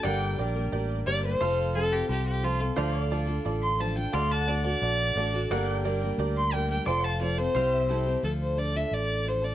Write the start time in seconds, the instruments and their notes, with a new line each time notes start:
0.03 fingered electric bass G1, steel-string acoustic guitar G2 D3 G3 A#3 D4 A#4, honky-tonk piano G4 A#4 D5, pedal steel guitar D5 F#5, fiddle G5
0.25 pedal steel guitar G5
0.38 fingered electric bass A#1, steel-string acoustic guitar G3 A#3 D4 A#4, honky-tonk piano G4 A#4 D5
0.56 steel-string acoustic guitar G3 A#3 D4 A#4
0.72 fingered electric bass A1, honky-tonk piano G4 A#4 D5
1.06 fingered electric bass G1, steel-string acoustic guitar G3 A#3 D4 A#4, honky-tonk piano G4 A#4 D5, fiddle D5
1.23 steel-string acoustic guitar G3 A#3 D4 A#4, fiddle C5
1.40 fingered electric bass F1, steel-string acoustic guitar F3 C4 F4 A4, honky-tonk piano F4 A4 C5, pedal steel guitar C5 F5
1.74 steel-string acoustic guitar F3 C4 F4 A4, honky-tonk piano F4 A4 C5, fiddle A4
1.91 steel-string acoustic guitar C4 F4 A4, fiddle G4
2.08 fingered electric bass C2, honky-tonk piano F4 A4 C5, fiddle G4
2.26 fiddle G4
2.43 steel-string acoustic guitar F3 C4 F4 A4, honky-tonk piano F4 A4 C5, fiddle F4
2.60 steel-string acoustic guitar C4 F4 A4
2.76 fingered electric bass D2, steel-string acoustic guitar D3 F3 D4 F4 A4, honky-tonk piano F4 A4 D5, pedal steel guitar C5 F5
3.02 pedal steel guitar D5
3.10 steel-string acoustic guitar F3 D4 F4 A4, honky-tonk piano F4 A4 D5
3.27 steel-string acoustic guitar D4 F4 A4
3.45 fingered electric bass A1, honky-tonk piano F4 A4 D5
3.63 fiddle C6
3.78 steel-string acoustic guitar F3 D4 F4 A4, honky-tonk piano F4 A4 C5, fiddle A5
3.95 steel-string acoustic guitar D4 F4 A4, fiddle G5
4.12 fingered electric bass D2, steel-string acoustic guitar D3 A3 D4 F#4 A4, honky-tonk piano F#4 A4 D5, pedal steel guitar D5 F5, fiddle C6
4.32 pedal steel guitar F#5, fiddle A5
4.47 steel-string acoustic guitar A3 D4 F#4 A4, honky-tonk piano F#4 A4 D5, fiddle D5
4.64 steel-string acoustic guitar D4 F#4 A4, fiddle D5
4.81 fingered electric bass A#1, honky-tonk piano F#4 A4 D5
5.15 fingered electric bass A1, steel-string acoustic guitar A3 D4 F#4 A4, honky-tonk piano F#4 A4 D5
5.34 steel-string acoustic guitar D4 F#4 A4
5.50 fingered electric bass G1, steel-string acoustic guitar G2 D3 G3 A#3 D4 A#4, honky-tonk piano G4 A#4 D5, pedal steel guitar D5 F#5
5.72 pedal steel guitar G5
5.84 steel-string acoustic guitar G3 A#3 D4 A#4, honky-tonk piano G4 A#4 D5
6.02 steel-string acoustic guitar G3 A#3 D4 A#4
6.18 fingered electric bass D2, honky-tonk piano G4 A#4 D5
6.37 fiddle C6
6.52 steel-string acoustic guitar G3 A#3 D4 A#4, honky-tonk piano G4 A#4 D5, fiddle G5
6.70 steel-string acoustic guitar G3 A#3 D4 A#4, fiddle G5
6.86 fingered electric bass F1, steel-string acoustic guitar F3 C4 F4 A4, honky-tonk piano F4 A4 C5, pedal steel guitar D5 G5, fiddle C6
7.04 fiddle A5
7.09 pedal steel guitar C5 F5
7.20 steel-string acoustic guitar F3 C4 F4 A4, honky-tonk piano F4 A4 C5, fiddle D5
7.38 steel-string acoustic guitar C4 F4 A4, fiddle C5
7.55 fingered electric bass C2, steel-string acoustic guitar C3 G3 C4 E4 G4, honky-tonk piano E4 G4 C5, pedal steel guitar C5 F5
7.74 pedal steel guitar E5
7.89 steel-string acoustic guitar G3 C4 E4 G4, honky-tonk piano E4 G4 A4
8.06 steel-string acoustic guitar C4 E4 G4
8.23 fingered electric bass D2, steel-string acoustic guitar D3 F3 D4 F4 A4, fiddle A4
8.42 fiddle C5
8.57 steel-string acoustic guitar F3 D4 F4 A4, fiddle D5
8.74 steel-string acoustic guitar D4 F4 A4, fiddle E5
8.91 fingered electric bass A1, fiddle D5
9.25 steel-string acoustic guitar F3 D4 F4 A4, fiddle C5
9.42 steel-string acoustic guitar D4 F4 A4, fiddle D5